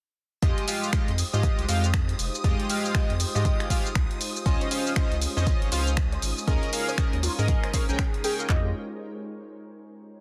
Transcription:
0.42 F2 G#3 D#4 F4 G4 C5 D#5 D#6, kick, closed hi-hat, shaker
0.58 closed hi-hat
0.67 G#3 F4 G4 F5, open hi-hat, shaker
0.84 shaker
0.93 D#5, finger snap, kick, closed hi-hat, shaker
1.08 F2, closed hi-hat
1.18 open hi-hat, shaker
1.33 G#2 G#3 F4 G4 D#5, shaker
1.43 kick, closed hi-hat, shaker
1.59 C2, closed hi-hat
1.68 F2 G#3 F4 G4 F5, open hi-hat, shaker
1.84 closed hi-hat, shaker
1.94 finger snap, kick, closed hi-hat, shaker
2.09 closed hi-hat
2.19 F1, open hi-hat, shaker
2.35 shaker
2.44 F2 G#3 F4 G4 D#5, kick, closed hi-hat, shaker
2.60 closed hi-hat
2.69 G#3 F4 G4 F5, open hi-hat, shaker
2.85 shaker
2.94 G#3 F4 G4 D#5, finger snap, kick, closed hi-hat, shaker
3.10 F2, closed hi-hat
3.20 open hi-hat, shaker
3.35 G#2 G#3 F4 G4 D#5, shaker
3.45 kick, closed hi-hat, shaker
3.60 finger snap, closed hi-hat
3.70 G#3 F4 G4 F5, kick, open hi-hat, shaker
3.86 closed hi-hat, shaker
3.95 C2, finger snap, kick, closed hi-hat, shaker
4.11 closed hi-hat
4.21 open hi-hat, shaker
4.36 shaker
4.46 C#2 C#4 F4 C5 D#5, kick, closed hi-hat, shaker
4.61 C5, closed hi-hat
4.71 C#4 F4 C5 F5, open hi-hat, shaker
4.87 shaker
4.96 C#4 F4 C5 D#5, finger snap, kick, closed hi-hat, shaker
5.12 C#2, closed hi-hat
5.22 open hi-hat, shaker
5.37 F2 C#4 F4 C5 D#5, shaker
5.47 kick, closed hi-hat, shaker
5.62 G#1, closed hi-hat
5.72 C#2 C#4 F4 C5 F5, open hi-hat, shaker
5.87 closed hi-hat, shaker
5.97 finger snap, kick, closed hi-hat, shaker
6.12 C5, closed hi-hat
6.22 G#1, open hi-hat, shaker
6.38 shaker
6.47 D#2 C#4 F4 G#4 A#4 C#5 D#5, kick, closed hi-hat, shaker
6.63 closed hi-hat
6.73 C#4 G#4 A#4 F5, open hi-hat, shaker
6.88 C5, shaker
6.98 C#4 G#4 A#4 D#5, finger snap, kick, closed hi-hat, shaker
7.13 D#2, closed hi-hat
7.23 F4, open hi-hat, shaker
7.38 G#2 C#4 G#4 A#4 D#5, shaker
7.48 kick, closed hi-hat, shaker
7.64 C5, finger snap, closed hi-hat
7.73 C#4 G#4 A#4 C5 F5, kick, open hi-hat, shaker
7.89 A#1 C#4 G#4 A#4 G5, closed hi-hat, shaker
7.99 G#4, finger snap, kick, closed hi-hat, shaker
8.14 closed hi-hat
8.24 C#4 G#4 A#4 G5, open hi-hat, shaker
8.39 F4, closed hi-hat, shaker
8.49 F2 G#3 F4 G4 D#5, kick, clap

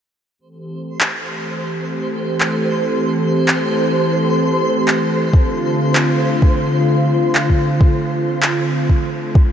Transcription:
0.39 E3 A3 C4 G4 A4 C5
1.01 clap
2.40 clap
3.48 clap
4.88 clap
5.33 D3 F4, kick
5.95 clap
6.42 kick
7.35 clap
7.50 kick
7.81 kick
8.43 clap
8.90 kick
9.35 kick

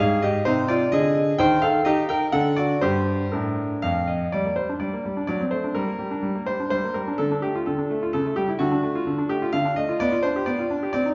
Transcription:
Already playing: F5
0.00 G#2 G#4
0.22 G4 D#5
0.45 C3 D#4 C5
0.68 F4 D5
0.92 D3 G#4 D#5
1.39 D#3 C5 G5
1.62 A4 F5
1.85 D#4 G4 D#5
2.09 A#4 G5
2.32 D3 A4 F#5
2.57 F#4 D5
2.81 G2 G4 C5
3.32 A2 D4 A#4
3.82 F2 F5
4.08 D#5
4.32 G3 D5
4.45 A#3
4.56 G3 C5
4.69 D4
4.80 G3 D5
4.93 A#3
5.05 G3
5.17 D4
5.27 F#3 D5
5.40 C4
5.51 A3 C5
5.64 D4
5.75 G3 A#4
5.88 A#3
5.99 G3
6.11 D4
6.23 G3
6.35 A#3
6.46 G3 C5
6.60 D4
6.70 G3 C5
6.84 A#3
6.94 G3 A#4
7.08 D4
7.18 D3 A4
7.31 D4
7.42 A3 G4
7.55 F4
7.66 D3 A4
7.78 D4
7.90 A3
8.03 F4
8.13 C#3 A4
8.26 A3
8.36 G3 G4
8.48 E4
8.59 D3 F#4
8.72 D4
8.83 A3
8.95 F4
9.07 D3
9.18 D4
9.29 A3 G4
9.42 F4
9.53 D3 F5
9.65 D4
9.76 A3 D#5
9.89 F4
10.00 B3 D5
10.12 F4
10.23 D4 C5
10.36 G4
10.46 B3 D5
10.59 F4
10.71 D4
10.83 G4
10.93 C4 D5
11.06 D#4

